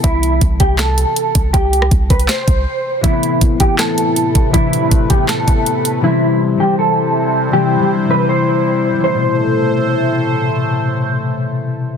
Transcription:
<<
  \new Staff \with { instrumentName = "Clean electric guitar" } { \time 4/4 \key a \minor \tempo 4 = 160 e'4 r8 g'8 a'2 | g'4 r8 b'8 c''2 | e'4 r8 g'8 a'2 | e'4 r8 g'8 a'2 |
e'4 r8 g'8 a'2 | g'4 r8 b'8 c''2 | c''2. r4 | r1 | }
  \new Staff \with { instrumentName = "Analog synth pad" } { \time 4/4 \key a \minor r1 | r1 | <a, c a b'>1~ | <a, c a b'>1 |
<c g e' c''>1~ | <c g e' c''>1 | <a, a a' c''>1~ | <a, a a' c''>1 | }
  \new Staff \with { instrumentName = "Harp" } { \clef bass \time 4/4 \key a \minor r1 | r1 | <c e a b>4 r8 <c e a b>4~ <c e a b>16 r4 r16 | <c e a d'>8 r16 <c e a c'>8 r16 <c e a b>4~ <c e a b>16 r4 r16 |
<c e g c'>4 r8 <c e g c'>4~ <c e g c'>16 r4 r16 | <c e g c'>8 r16 <c e g d'>8 r16 <c e g c'>4~ <c e g c'>16 r4 r16 | <b, c e a>1~ | <b, c e a>1 | }
  \new Staff \with { instrumentName = "808-style bass" } { \clef bass \time 4/4 \key a \minor c,4 c,8 c,4~ c,16 r8. c,8 | c,4 c,8 c,8 r8 c,8 r4 | r1 | r1 |
r1 | r1 | r1 | r1 | }
  \new DrumStaff \with { instrumentName = "Drums" } \drummode { \time 4/4 <hh bd>8 hh8 <hh bd>8 <hh bd>8 <hc hh sn>8 hh8 hh8 <hh bd>8 | <hh bd>8 hh16 ss16 <hh bd>8 <hh bd>16 hh16 <hc hh sn>8 <hh bd>8 r4 | <hh bd>8 hh8 <hh bd>8 <hh bd>8 <hc hh sn>8 hh8 hh8 <hh bd>8 | <hh bd>8 hh8 <hh bd>8 <hh bd>8 <hc hh sn>8 <hh bd>8 hh8 hh8 |
r4 r4 r4 r4 | r4 r4 r4 r4 | r4 r4 r4 r4 | r4 r4 r4 r4 | }
>>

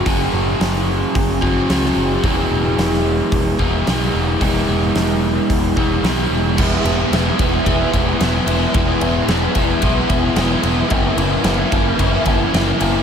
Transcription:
<<
  \new Staff \with { instrumentName = "Overdriven electric guitar" } { \time 4/4 \key e \lydian \tempo 4 = 111 <fis cis' fis' gis'>2~ <fis cis' fis' gis'>8 <fis cis' fis' gis'>8 <fis cis' fis' gis'>4 | <e gis b e' gis'>2~ <e gis b e' gis'>8 <e gis b e' gis'>8 <e gis b e' gis'>4 | <e gis b e' gis'>2~ <e gis b e' gis'>8 <e gis b e' gis'>8 <e gis b e' gis'>4 | <e gis b e'>8 <gis b e'>8 <e gis b e'>8 <gis b e'>8 <e gis b e'>8 <gis b e'>8 <e gis b e'>8 <gis b e'>8 |
<e gis b e'>8 <gis b e'>8 <e gis b e'>8 <gis b e'>8 <e gis b e'>8 <gis b e'>8 <e gis b e'>8 <gis b e'>8 | <fis, cis e ais e'>8 <e ais e'>8 <cis e ais e'>8 <e ais e'>8 <fis, cis e ais e'>8 <e ais e'>8 <cis e ais e'>8 <e ais e'>8 | }
  \new Staff \with { instrumentName = "Picked electric bass" } { \clef bass \time 4/4 \key e \lydian fis,,8 fis,,8 fis,,4 fis,,8 fis,,8 cis,8 fis,,8 | e,,8 e,,8 e,,4 e,,8 e,,8 b,,8 e,,8 | e,,8 e,,8 e,,4 e,,8 e,,8 b,,8 e,,8 | e,,8 e,,8 e,,8 e,,8 e,,8 e,,8 e,,8 e,,8 |
e,,8 e,,8 e,,8 e,,8 b,,8 e,,8 e,,8 e,,8 | fis,,8 fis,,8 fis,,8 fis,,8 fis,,8 fis,,8 fis,,8 fis,,8 | }
  \new DrumStaff \with { instrumentName = "Drums" } \drummode { \time 4/4 <hho bd>4 <hho sn>16 sn8. <hho bd>8 bd8 <hho sn>16 sn8. | <hho bd>4 <hho sn>16 sn8. <hho bd>8 bd8 <hho sn>4 | <hho bd>4 <hho sn>4 <hho bd>8 bd8 <hho sn>4 | <cymc bd>8 cymr8 <cymr sn>8 <bd cymr>8 <bd cymr>8 <bd cymr>8 <cymr sn>8 cymr8 |
<bd cymr>8 cymr8 <cymr sn>8 <bd cymr>8 <bd cymr>8 <bd cymr>8 <cymr sn>8 cymr8 | <bd cymr>8 cymr8 <cymr sn>8 <bd cymr>8 <bd cymr>8 <bd cymr>8 <cymr sn>8 cymr8 | }
>>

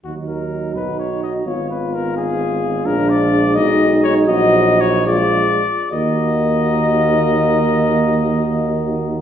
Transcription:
<<
  \new Staff \with { instrumentName = "Trumpet" } { \time 6/8 \key ees \minor \tempo 4. = 79 ges'8 bes'4 b'8 des''8 dis''8 | des''8 ces''8 bes'8 aes'4. | bes'8 d''4 dis''4 des''8 | ees''4 des''8 d''4. |
ees''2.~ | ees''2. | }
  \new Staff \with { instrumentName = "Flugelhorn" } { \time 6/8 \key ees \minor ees'2. | f'2.~ | f'4. dis'4.~ | dis'4. f'4 r8 |
bes'2.~ | bes'2. | }
  \new Staff \with { instrumentName = "French horn" } { \time 6/8 \key ees \minor r4. fis'4. | f'2. | d'4. dis'4. | ges'4. f'8. r8. |
ges'2.~ | ges'2. | }
  \new Staff \with { instrumentName = "Euphonium" } { \clef bass \time 6/8 \key ees \minor ges2. | ces'2. | aes2. | ges4. aes4 r8 |
bes2.~ | bes2. | }
  \new Staff \with { instrumentName = "Tuba" } { \clef bass \time 6/8 \key ees \minor ees,4. b,,4. | aes,,2. | bes,,4. b,,4. | bes,,2~ bes,,8 r8 |
ees,2.~ | ees,2. | }
>>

